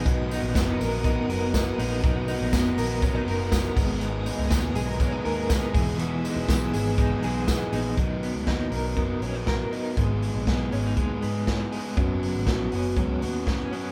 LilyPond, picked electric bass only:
\new Staff \with { instrumentName = "Picked electric bass" } { \clef bass \time 4/4 \key b \major \tempo 4 = 121 b,,8. ais,,16 fis,,8 ais,,4 fis,,4 ais,,8 | b,,8. ais,,16 fis,,8 ais,,4 fis,,4 gis,,8~ | gis,,8. cis,16 dis,8 b,,4 dis,4 e,,8~ | e,,8. e,,16 b,,8 gis,,4 b,,4 ais,,8 |
b,,8. cis,16 dis,8 b,,8 fis,,8 ais,,4 r8 | gis,,8. ais,,16 b,,8 gis,,8 dis,8 gis,4 r8 | fis,,8. gis,,16 ais,,8 fis,,8 cis,8 dis,4 r8 | }